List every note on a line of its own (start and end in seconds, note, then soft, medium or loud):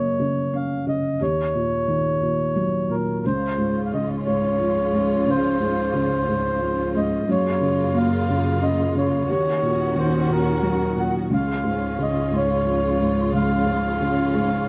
0.00 1.16 F#2 soft
0.00 0.18 C#3 soft
0.00 1.16 A#3 soft
0.00 0.56 C#5 medium
0.20 0.85 C#3 soft
0.53 1.18 C#4 soft
0.53 0.86 F5 medium
0.87 1.19 C#3 soft
0.87 1.22 D#5 medium
1.20 3.20 D#2 soft
1.20 2.95 C#5 medium
1.55 2.21 A#2 soft
1.88 3.20 D#3 soft
2.22 2.88 A#2 soft
2.56 3.21 F#3 soft
2.90 3.23 A#2 soft
2.90 3.25 A#4 medium
3.23 7.23 C#2 soft
3.23 5.23 C#2 soft
3.23 7.23 C#3 soft
3.23 7.23 C#4 soft
3.23 7.23 F4 soft
3.23 3.82 C5 medium
3.58 4.26 G#2 soft
3.86 3.92 F5 soft
3.93 5.23 C#3 soft
3.93 4.09 D#5 medium
4.26 4.91 G#2 soft
4.26 5.30 C#5 medium
4.60 5.90 F3 soft
4.93 5.58 G#2 soft
5.26 7.23 C#2 soft
5.26 7.00 C5 medium
5.60 6.26 G#2 soft
5.94 7.23 C#3 soft
6.28 6.93 G#2 soft
6.62 7.26 F3 soft
6.95 7.27 G#2 soft
6.95 7.30 D#5 medium
7.27 9.27 F#2 medium
7.27 9.25 F#2 soft
7.27 9.27 C#3 medium
7.27 9.27 A#3 soft
7.27 9.27 F4 medium
7.27 7.98 C#5 medium
7.61 8.27 C#3 soft
7.94 9.25 A#3 soft
7.94 8.65 F5 medium
8.29 8.93 C#3 soft
8.61 9.27 C#4 soft
8.61 8.93 D#5 medium
8.95 9.28 C#3 soft
8.95 9.30 C#5 medium
9.28 11.29 D#2 medium
9.28 11.28 D#2 soft
9.28 11.29 D#3 soft
9.28 11.29 C#4 soft
9.28 11.29 F#4 medium
9.28 10.00 C#5 medium
9.62 10.27 A#2 soft
9.96 11.27 D#3 soft
9.96 10.32 C5 medium
10.29 10.95 A#2 soft
10.29 11.01 A#4 medium
10.62 11.29 F#3 soft
10.96 11.30 A#2 soft
10.96 11.15 F#5 medium
11.30 13.29 C#2 soft
11.30 14.69 C#2 medium
11.30 14.69 C#3 soft
11.30 13.32 C#4 soft
11.30 14.69 F4 medium
11.34 12.03 F5 medium
11.64 12.30 G#2 soft
11.99 13.30 C#3 soft
11.99 12.36 D#5 medium
12.31 12.99 G#2 soft
12.36 13.32 C#5 medium
12.65 13.96 F3 soft
13.01 13.65 G#2 soft
13.33 14.69 C#2 soft
13.33 14.69 C#4 soft
13.33 14.69 F5 medium
13.66 14.33 G#2 soft
14.01 14.69 C#3 soft
14.34 14.69 G#2 soft